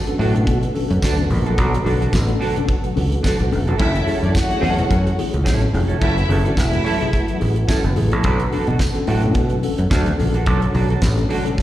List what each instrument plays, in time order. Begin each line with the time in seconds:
Already playing: tonewheel organ D3 F#3 A3 B3 F#4
0.07 tine electric piano C#4 D4 A4, muted clean electric guitar stroke, closed hi-hat, muted conga
0.19 fingered electric bass A2, tine electric piano B2 F#3, clean electric guitar D4 F#4 A4, open hi-hat
0.34 tine electric piano C#4 D4 A4, muted clean electric guitar stroke, closed hi-hat, low conga
0.46 fingered electric bass B2, tine electric piano D4 A4, muted clean electric guitar stroke, kick, closed hi-hat
0.62 tine electric piano B2 F#3, muted clean electric guitar stroke, closed hi-hat, muted conga
0.74 tine electric piano C#4 D4 A4, open hi-hat, high conga
0.90 fingered electric bass F#2, muted clean electric guitar stroke, closed hi-hat
1.02 fingered electric bass D2, clean electric guitar D4 F#4 A4, kick, snare, closed hi-hat, tambourine
1.17 tine electric piano C#4 D4 A4, muted clean electric guitar stroke, closed hi-hat, muted conga, high conga
1.30 fingered electric bass A#1, muted clean electric guitar stroke, open hi-hat, low conga
1.45 tine electric piano B2 F#3, clean electric guitar D4 F#4 A4, closed hi-hat
1.58 fingered electric bass B1, tine electric piano B2 F#3, clean electric guitar D4 F#4 A4, kick, closed hi-hat
1.73 muted clean electric guitar stroke, closed hi-hat
1.85 fingered electric bass B1, clean electric guitar D4 F#4 A4, tine electric piano D4 A4, open hi-hat, high conga
2.00 clean electric guitar D4 F#4 A4, closed hi-hat, high conga
2.13 fingered electric bass A1, kick, snare, closed hi-hat, tambourine, muted conga
2.28 tine electric piano C#4 D4 A4, muted clean electric guitar stroke, closed hi-hat, muted conga
2.40 tine electric piano B2 F#3, clean electric guitar D4 F#4 A4, open hi-hat
2.56 tine electric piano C#4 D4 A4, muted clean electric guitar stroke, closed hi-hat, low conga
2.68 tine electric piano D4 A4, muted clean electric guitar stroke, kick, closed hi-hat, muted conga
2.83 tine electric piano B2 F#3, muted clean electric guitar stroke, closed hi-hat
2.96 fingered electric bass C#2, tine electric piano C#4 D4 A4, open hi-hat, high conga
3.12 muted clean electric guitar stroke, closed hi-hat
3.23 tine electric piano B2 F#3, clean electric guitar D4 F#4 A4, kick, snare, closed hi-hat, tambourine, muted conga
3.39 fingered electric bass B1, muted clean electric guitar stroke, closed hi-hat, high conga
3.51 fingered electric bass E1, tine electric piano C#4 D4 A4, muted clean electric guitar stroke, open hi-hat, low conga
3.67 fingered electric bass F1, tine electric piano D4 A4, clean electric guitar D4 F#4 A4, closed hi-hat
3.78 fingered electric bass F#1, tonewheel organ E3 C#4 F#4, tine electric piano F#3, clean electric guitar C#4 E4 A4, string section E4 E5, kick, closed hi-hat
3.93 muted clean electric guitar stroke, closed hi-hat, muted conga
4.06 clean electric guitar C#4 E4 A4, tine electric piano E4 G#4, open hi-hat, high conga
4.21 fingered electric bass F#2, clean electric guitar C#4 E4 A4, string section D4 D5, closed hi-hat, high conga
4.35 string section F#4 F#5, kick, snare, closed hi-hat, tambourine, muted conga
4.49 tine electric piano A3 E4 G#4, muted clean electric guitar stroke, closed hi-hat, muted conga
4.60 fingered electric bass E2, tine electric piano F#3, clean electric guitar C#4 E4 A4, open hi-hat
4.77 tine electric piano A3 E4 G#4, muted clean electric guitar stroke, closed hi-hat, low conga
4.89 fingered electric bass F#2, tine electric piano E4 G#4, muted clean electric guitar stroke, kick, closed hi-hat, muted conga
5.04 tine electric piano F#3, muted clean electric guitar stroke, closed hi-hat, muted conga
5.18 tine electric piano A3 E4 G#4, open hi-hat, high conga
5.32 fingered electric bass C#2, muted clean electric guitar stroke, closed hi-hat
5.44 fingered electric bass A1, tine electric piano F#3, clean electric guitar C#4 E4 A4, kick, snare, closed hi-hat, tambourine
5.60 muted clean electric guitar stroke, closed hi-hat, high conga
5.73 fingered electric bass F1, tine electric piano A3 E4 G#4, muted clean electric guitar stroke, open hi-hat, low conga
5.88 clean electric guitar C#4 E4 A4, tine electric piano E4 G#4, closed hi-hat
6.00 fingered electric bass F#1, tine electric piano F#3, tonewheel organ B3, clean electric guitar C#4 E4 A4, string section E4 E5, kick, closed hi-hat
6.17 muted clean electric guitar stroke, closed hi-hat, muted conga
6.28 fingered electric bass F#1, clean electric guitar C#4 E4 A4, tine electric piano E4 G#4, open hi-hat, high conga
6.45 clean electric guitar C#4 E4 A4, string section D4 D5, closed hi-hat, high conga
6.57 fingered electric bass E1, string section E4 E5, kick, snare, closed hi-hat, tambourine
6.72 tine electric piano A3 E4 G#4, muted clean electric guitar stroke, closed hi-hat
6.84 tine electric piano F#3, clean electric guitar C#4 E4 A4, open hi-hat
7.00 tine electric piano A3 E4 G#4, muted clean electric guitar stroke, closed hi-hat, low conga
7.12 tine electric piano E4 G#4, muted clean electric guitar stroke, kick, closed hi-hat
7.27 tine electric piano F#3, muted clean electric guitar stroke, closed hi-hat
7.40 fingered electric bass A1, tine electric piano A3 E4 G#4, open hi-hat, high conga
7.56 muted clean electric guitar stroke, closed hi-hat
7.67 tine electric piano F#3, clean electric guitar C#4 E4 A4, kick, snare, closed hi-hat, tambourine
7.83 fingered electric bass F#1, muted clean electric guitar stroke, closed hi-hat, muted conga, high conga
7.96 fingered electric bass A1, tine electric piano A3 E4 G#4, muted clean electric guitar stroke, open hi-hat, low conga
8.11 fingered electric bass A#1, clean electric guitar C#4 E4 A4, tine electric piano E4 G#4, closed hi-hat
8.23 fingered electric bass B1, tine electric piano B2 F#3, tonewheel organ D3 F#3 A3 B3, clean electric guitar D4 F#4 A4, kick, closed hi-hat, muted conga
8.40 muted clean electric guitar stroke, closed hi-hat, muted conga
8.52 tine electric piano D4 A4, clean electric guitar D4 F#4 A4, open hi-hat, high conga
8.67 fingered electric bass B2, clean electric guitar D4 F#4 A4, closed hi-hat, high conga
8.79 kick, snare, closed hi-hat, tambourine
8.94 tine electric piano C#4 D4 A4, muted clean electric guitar stroke, closed hi-hat, muted conga
9.07 fingered electric bass A2, tine electric piano B2 F#3, clean electric guitar D4 F#4 A4, open hi-hat
9.22 tine electric piano C#4 D4 A4, muted clean electric guitar stroke, closed hi-hat, low conga
9.34 fingered electric bass B2, muted clean electric guitar stroke, kick, closed hi-hat, muted conga
9.50 tine electric piano B2 F#3, muted clean electric guitar stroke, closed hi-hat, muted conga
9.63 tine electric piano C#4 D4 A4, open hi-hat, high conga
9.78 fingered electric bass F#2, muted clean electric guitar stroke, closed hi-hat
9.90 fingered electric bass D2, tine electric piano B2 F#3, clean electric guitar D4 F#4 A4, kick, snare, closed hi-hat, tambourine
10.06 closed hi-hat, muted conga, high conga
10.18 fingered electric bass A#1, tine electric piano C#4 D4 A4, muted clean electric guitar stroke, open hi-hat, low conga
10.34 tine electric piano D4 A4, clean electric guitar D4 F#4 A4, closed hi-hat
10.45 fingered electric bass B1, tine electric piano B2 F#3, clean electric guitar D4 F#4 A4, kick, closed hi-hat
10.49 tonewheel organ C#4
10.61 muted clean electric guitar stroke, closed hi-hat, muted conga
10.73 fingered electric bass B1, tine electric piano D4 A4, clean electric guitar D4 F#4 A4, open hi-hat, high conga
10.90 clean electric guitar D4 F#4 A4, closed hi-hat, high conga
11.02 fingered electric bass A1, kick, snare, closed hi-hat, tambourine, muted conga
11.16 tine electric piano C#4 D4 A4, muted clean electric guitar stroke, closed hi-hat
11.29 tine electric piano B2 F#3, clean electric guitar D4 F#4 A4, open hi-hat, low conga
11.44 tine electric piano C#4 D4 A4, muted clean electric guitar stroke, closed hi-hat, low conga
11.56 tine electric piano D4 A4, muted clean electric guitar stroke, kick, muted conga